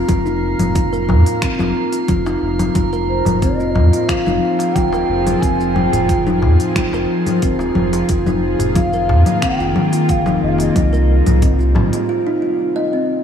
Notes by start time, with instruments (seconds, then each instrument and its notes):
Already playing: synth texture A#3 A#4
0.08 sub bass F1, kalimba F4, kick, open hi-hat, low conga, shaker
0.26 kalimba D#4, shaker
0.59 sub bass F1, open hi-hat, darbuka dum, low conga, shaker
0.75 kalimba F4, kick, open hi-hat, shaker
0.93 kalimba A#4, shaker
1.09 sub bass F2, darbuka ka, darbuka tek, low conga, darbuka dum
1.26 open hi-hat, darbuka ka, shaker
1.42 kalimba C4, finger snap, kick, open hi-hat, shaker
1.59 sub bass F1, kalimba F4, darbuka tek, low conga, shaker
1.93 kalimba F4, open hi-hat, shaker
2.08 sub bass F1, kalimba F4, kick, open hi-hat, low conga, shaker
2.26 kalimba D#4, darbuka tek, shaker
2.42 sub bass F1
2.59 open hi-hat, darbuka tek, low conga, shaker
2.74 sub bass F1, synth drone F3 C4 F4 G#4, kalimba F4, kick, open hi-hat, low conga, shaker
2.93 kalimba A#4, shaker
3.09 bansuri C5
3.25 sub bass F1, open hi-hat, darbuka dum, low conga, shaker
3.41 kalimba C4, bansuri D#5, kick, open hi-hat, shaker
3.60 kalimba F4, shaker
3.75 sub bass F2, darbuka ka, darbuka tek, darbuka dum, low conga
3.93 kalimba F4, open hi-hat, darbuka ka, shaker
4.08 kalimba F4, bansuri F5, finger snap, kick, open hi-hat, darbuka tek, shaker
4.26 sub bass F1, kalimba D#4, low conga, shaker
4.59 open hi-hat, darbuka tek, shaker
4.75 sub bass D#1, kalimba F4, bansuri G5, kick, open hi-hat, low conga, shaker
4.93 kalimba A#4, darbuka tek, shaker
5.09 sub bass F1
5.26 open hi-hat, darbuka ka, low conga, shaker
5.41 sub bass F1, kalimba C4, bansuri G#5, kick, open hi-hat, shaker
5.60 kalimba F4, shaker
5.75 bansuri G5, low conga
5.93 sub bass F1, kalimba F4, open hi-hat, darbuka dum, shaker
6.09 kalimba F4, kick, open hi-hat, shaker
6.27 kalimba D#4, low conga, shaker
6.42 sub bass F2, darbuka ka, darbuka tek, darbuka dum
6.60 open hi-hat, darbuka ka, shaker
6.76 kalimba F4, finger snap, kick, open hi-hat, low conga, shaker
6.92 sub bass F1, kalimba A#4, darbuka tek, shaker
7.26 open hi-hat, low conga, shaker
7.42 sub bass D#1, kalimba C4, kick, open hi-hat, shaker
7.59 kalimba F4, darbuka tek, shaker
7.75 sub bass F1, low conga
7.93 kalimba F4, open hi-hat, darbuka tek, shaker
8.09 sub bass F1, synth drone D#3 A#3 F4, kalimba F4, kick, open hi-hat, shaker
8.26 kalimba D#4, low conga, shaker
8.59 sub bass F1, open hi-hat, darbuka dum, shaker
8.76 kalimba F4, bansuri F5, kick, open hi-hat, low conga, shaker
8.93 kalimba A#4, shaker
9.08 sub bass F2, darbuka ka, darbuka tek, darbuka dum
9.26 open hi-hat, darbuka ka, low conga, shaker
9.42 kalimba C4, bansuri G5, finger snap, kick, open hi-hat, darbuka tek, shaker
9.60 sub bass F1, kalimba F4, shaker
9.76 low conga
9.92 kalimba F4, open hi-hat, darbuka tek, shaker
10.09 sub bass D#1, kalimba F4, bansuri F5, kick, open hi-hat, shaker
10.26 kalimba D#4, darbuka tek, low conga, shaker
10.43 sub bass F1, bansuri D#5
10.49 bansuri F5
10.57 bansuri F5, open hi-hat, darbuka ka, shaker
10.61 bansuri D#5
10.76 sub bass C2, synth drone C3 G3 C4 D#4, kalimba F4, kick, open hi-hat, low conga, shaker
10.93 kalimba A#4, shaker
11.26 sub bass C2, open hi-hat, low conga, darbuka dum, shaker
11.42 kalimba C4, kick, open hi-hat, shaker
11.59 kalimba F4, shaker
11.75 sub bass G1, darbuka ka, darbuka tek, darbuka dum, low conga
11.93 kalimba F4, open hi-hat, darbuka ka, shaker
12.09 kalimba F4
12.27 kalimba D#4
12.42 kalimba F4
12.76 kalimba D#5
12.93 kalimba C4